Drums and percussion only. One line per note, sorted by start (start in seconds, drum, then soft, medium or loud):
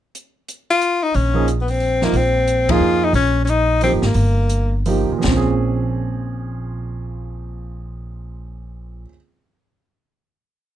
0.15 closed hi-hat medium
0.48 closed hi-hat medium
0.81 closed hi-hat medium
1.14 open hi-hat soft
1.48 closed hi-hat soft
1.68 open hi-hat soft
1.80 open hi-hat soft
2.02 snare soft
2.13 open hi-hat soft
2.48 closed hi-hat soft
2.69 kick medium
2.69 ride medium
3.14 open hi-hat soft
3.47 closed hi-hat medium
3.81 open hi-hat soft
4.02 snare soft
4.14 open hi-hat soft
4.49 closed hi-hat medium
4.86 open hi-hat soft
5.24 kick medium
5.24 snare medium